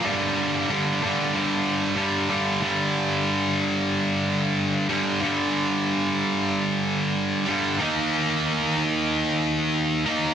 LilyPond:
\new Staff \with { instrumentName = "Distorted electric guitar" } { \clef bass \time 4/4 \key g \minor \tempo 4 = 93 <g, d g>4 <g, d g>8 <g, d g>8 <g, d g>4 <g, d g>8 <g, d g>8 | <g, d g>2.~ <g, d g>8 <g, d g>8 | <g, d g>2.~ <g, d g>8 <g, d g>8 | <ees bes ees'>2.~ <ees bes ees'>8 <ees bes ees'>8 | }